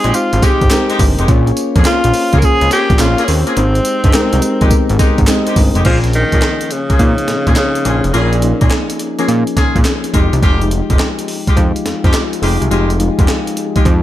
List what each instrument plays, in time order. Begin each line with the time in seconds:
Already playing: synth keys G#3 C4 D#4 G4 C5 G5, tenor saxophone G#4
0.04 analog synth bass A#1, horn section G#3 C4 D#4 G4, closed hi-hat
0.14 synth keys G#3 C4 D#4 G4 C5, tenor saxophone F4, closed hi-hat, tambourine
0.33 analog synth bass G#1, closed hi-hat
0.42 horn section G#3 C4 D#4 G4, tenor saxophone G4, kick, snare, closed hi-hat, tambourine
0.61 analog synth bass G#1, kick, closed hi-hat
0.70 synth keys G#3 C4 D#4 G4 A#4, snare, clap, closed hi-hat, tambourine
0.90 horn section G#3 C4 D#4 G4, closed hi-hat
0.99 analog synth bass G1, kick, open hi-hat, tambourine
1.18 analog synth bass F1, horn section G#3 C4 D#4 G4, closed hi-hat
1.28 analog synth bass A#1, synth keys A#3 C#4 F4 G#4 C#5, kick, closed hi-hat
1.47 closed hi-hat
1.57 closed hi-hat, tambourine
1.75 analog synth bass F2, horn section A#3 C#4 F4 G#4, kick, closed hi-hat
1.85 synth keys A#3 C#4 F4 G#4 C5, tenor saxophone F4, snare, clap, closed hi-hat, tambourine
1.93 synth keys C#5
2.04 analog synth bass A#1, closed hi-hat
2.14 open hi-hat, tambourine
2.33 analog synth bass C#2, horn section A#3 C#4 F4 G#4, kick, closed hi-hat
2.39 synth keys A#3, tenor saxophone A#4, kick, closed hi-hat, tambourine
2.43 synth keys C#4 F4 G#4 C#5, tenor saxophone G#4
2.61 analog synth bass C#2, closed hi-hat
2.71 horn section A#3 C#4 F4 G#4, tenor saxophone G4, snare, closed hi-hat, tambourine
2.90 analog synth bass A#1, kick, closed hi-hat
2.99 analog synth bass A#1, synth keys A#3 C#4 F4 G#4 C#5, tenor saxophone F4, snare, clap, closed hi-hat, tambourine
3.18 horn section A#3 C#4 F4 G#4, closed hi-hat
3.24 tenor saxophone C#4, open hi-hat, tambourine
3.28 analog synth bass D#2, tenor saxophone C4
3.47 horn section A#3 C#4 F4 G#4, closed hi-hat
3.57 analog synth bass G#1, synth keys G#3 C4 D#4 G4 C5, closed hi-hat
3.75 closed hi-hat
3.85 closed hi-hat, tambourine
4.04 analog synth bass G1, horn section G#3 C4 D#4 G4, kick, closed hi-hat
4.13 synth keys G#3 C4 D#4 G4 A#4, snare, clap, closed hi-hat, tambourine
4.33 analog synth bass C2, closed hi-hat
4.42 closed hi-hat, tambourine
4.61 analog synth bass A#1, horn section G#3 C4 D#4 G4, kick, closed hi-hat
4.71 synth keys G#3 B3 D#4 G4 A#4, kick, closed hi-hat, tambourine
4.77 synth keys C4
4.89 analog synth bass G#1, closed hi-hat
4.99 horn section G#3 C4 D#4 G4, kick, snare, closed hi-hat, tambourine
5.18 analog synth bass G#1, kick, closed hi-hat
5.27 synth keys G#3 C4 D#4 G4 D#5, snare, clap, closed hi-hat, tambourine
5.47 horn section G#3 C4 D#4 G4, closed hi-hat
5.56 analog synth bass G1, kick, open hi-hat, tambourine
5.75 analog synth bass F1, horn section G#3 C4 D#4 G4, closed hi-hat
5.85 analog synth bass A#1, synth keys F3 A#3 C#4 G#4, tenor saxophone F3, horn section A#3 C#4 F4 G#4, kick, closed hi-hat, crash
6.04 synth keys F3 A#3 C#4 G#4, closed hi-hat
6.13 tenor saxophone D#3, closed hi-hat
6.32 analog synth bass A#1, horn section A#3 C#4 F4 G#4, kick, closed hi-hat
6.42 snare, clap, closed hi-hat
6.61 closed hi-hat
6.71 tenor saxophone C#3, closed hi-hat
6.90 horn section A#3 C#4 F4 G#4, kick, closed hi-hat
6.99 analog synth bass A#2, synth keys F3 A#3 C4 D#4, kick, closed hi-hat
7.07 synth keys C#4
7.18 closed hi-hat
7.28 analog synth bass A#2, snare, closed hi-hat
7.47 analog synth bass A#2, horn section A#3 C#4 F4 G#4, kick, closed hi-hat
7.56 tenor saxophone C#3, snare, clap, closed hi-hat
7.75 closed hi-hat
7.85 analog synth bass A#1, synth keys F3 A#3 C#4 G#4, horn section A#3 C#4 F4 G#4, closed hi-hat
8.04 analog synth bass F1, closed hi-hat
8.14 analog synth bass A#1, tenor saxophone A#2, synth keys F3 A#3 C#4 G#4, horn section A#3 C#4 F4 G#4, closed hi-hat
8.33 closed hi-hat
8.42 synth keys F3 A#3 C#4 D#4, closed hi-hat
8.61 analog synth bass A#1, horn section A#3 C#4 F4 G#4, kick, closed hi-hat
8.70 snare, clap, closed hi-hat
8.90 closed hi-hat
8.99 closed hi-hat
9.18 synth keys F3 A#3 C#4 G#4, horn section A#3 C#4 F4 G#4, closed hi-hat
9.28 analog synth bass A#2, closed hi-hat
9.47 closed hi-hat
9.57 analog synth bass A#2, horn section A#3 C#4 F4 G#4, kick, snare, closed hi-hat
9.76 analog synth bass A#2, kick, closed hi-hat
9.85 snare, clap, closed hi-hat
10.04 closed hi-hat
10.14 analog synth bass F1, synth keys F3 G#3 D#4 G4, horn section G#3 D#4 F4 G4, kick, closed hi-hat
10.33 analog synth bass C2, closed hi-hat
10.42 analog synth bass F1, horn section G#3 D#4 F4 G4, kick, closed hi-hat
10.61 synth keys F3 G#3 D#4 G4, closed hi-hat
10.71 closed hi-hat
10.90 analog synth bass F1, horn section G#3 D#4 F4 G4, kick, closed hi-hat
10.99 snare, clap, closed hi-hat
11.19 closed hi-hat
11.28 open hi-hat
11.47 horn section G#3 D#4 F4 G4, kick, closed hi-hat
11.57 analog synth bass F2, synth keys F3 G#3 D#4 F4, kick, closed hi-hat
11.76 closed hi-hat
11.85 analog synth bass F2, snare, closed hi-hat
12.04 analog synth bass F2, horn section G#3 D#4 F4 G4, kick, closed hi-hat
12.13 snare, clap, closed hi-hat
12.33 closed hi-hat
12.42 analog synth bass F1, synth keys F3 G#3 D#4 G#4, horn section G#3 D#4 F4 G4, open hi-hat
12.61 analog synth bass C2, closed hi-hat
12.71 analog synth bass F1, synth keys F3 G#3 D#4 G4, horn section G#3 D#4 F4 G4, closed hi-hat
12.90 closed hi-hat
12.99 synth keys F3 G#3 D#4 F4, closed hi-hat
13.18 analog synth bass F1, horn section G#3 D#4 F4 G4, kick, closed hi-hat
13.28 snare, clap, closed hi-hat
13.47 closed hi-hat
13.57 closed hi-hat
13.75 synth keys F3 G#3 D#4 G4, horn section G#3 D#4 F4 G4, kick, closed hi-hat
13.85 analog synth bass F2, kick, closed hi-hat